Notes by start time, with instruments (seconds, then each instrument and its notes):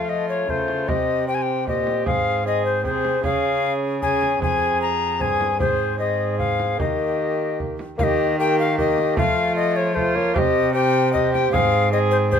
Already playing: cello F3, bassoon A3, viola F4, recorder F5
0.09 recorder D#5
0.29 recorder C#5
0.48 cello C#3, bassoon A3, viola F4, recorder C5, frame drum
0.68 frame drum
0.88 cello C3, bassoon C4, viola G4, recorder D#5, frame drum
1.28 bassoon C4, viola G4, recorder G5
1.34 recorder G#5
1.42 recorder G5
1.67 cello A#2, bassoon C4, viola G4, recorder D#5, frame drum
1.87 frame drum
2.06 cello G#2, bassoon C4, viola G#4, recorder F5, frame drum
2.46 bassoon C4, viola G#4, recorder D#5
2.65 recorder C5
2.84 cello C3, bassoon C4, viola G#4, recorder C5, frame drum
3.05 frame drum
3.24 cello C#3, bassoon C#4, viola G#4, recorder F5, frame drum
4.02 bassoon C#4, viola G#4, recorder G#5, frame drum
4.22 frame drum
4.40 cello F2, bassoon C4, viola G#4, recorder G#5, frame drum
4.82 recorder A#5
5.20 cello G2, bassoon C4, viola G#4, recorder G#5, frame drum
5.41 frame drum
5.59 cello G#2, bassoon C4, viola G#4, recorder C5, frame drum
5.99 bassoon C4, viola G#4, recorder D#5
6.39 recorder F5, frame drum
6.60 frame drum
6.78 cello D#3, bassoon A#3, viola G4, recorder D#5, frame drum
7.60 frame drum
7.79 frame drum
7.98 cello D#3, bassoon A#3, viola G4, recorder F5, frame drum
8.03 recorder D#5
8.39 bassoon A#3, viola G4, recorder G5
8.59 recorder F5
8.78 bassoon A#3, viola G4, recorder D#5, frame drum
8.98 frame drum
9.17 cello F3, bassoon A3, viola F4, recorder F5, frame drum
9.56 recorder D#5
9.76 recorder C#5
9.95 bassoon A3, viola F4, recorder C5, frame drum
10.15 bassoon A#3, recorder C#5, frame drum
10.34 cello C3, bassoon C4, viola G4, recorder D#5 F5, frame drum
10.74 bassoon C4, viola G4, recorder G5
11.13 bassoon C4, viola G4, recorder D#5, frame drum
11.34 recorder G5, frame drum
11.52 cello G#2, bassoon C4, viola G#4, recorder F5, frame drum
11.92 bassoon C4, viola G#4, recorder D#5
12.11 recorder C5
12.31 bassoon C4, viola G#4, recorder C5, frame drum